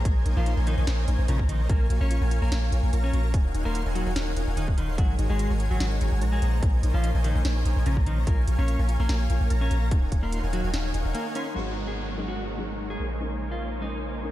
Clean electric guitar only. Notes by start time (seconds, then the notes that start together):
0.37 F3 F4
0.67 D#3 D#4
1.28 C#3 C#4
1.49 D#3 D#4
1.69 A#3 A#4
2.01 C#4 C#5
2.42 A#3 A#4
3.04 C#4 C#5
3.65 A#3 A#4
3.95 F#3 F#4
4.57 D#3 D#4
4.78 D#3 D#4
4.98 F#3 F#4
5.29 G#3 G#4
5.71 F#3 F#4
6.32 G#3 G#4
6.94 F3 F4
7.24 D#3 D#4
7.86 C#3 C#4
8.06 D#3 D#4
8.27 A#3 A#4
8.59 C#4 C#5
9.00 A#3 A#4
9.61 C#4 C#5
10.23 A#3 A#4
10.53 F#3 F#4
11.15 A#3 A#4
11.36 C#4 C#5
11.56 F#4
11.87 G#4
12.28 F#4
12.90 G#4
13.52 F4
13.82 D#4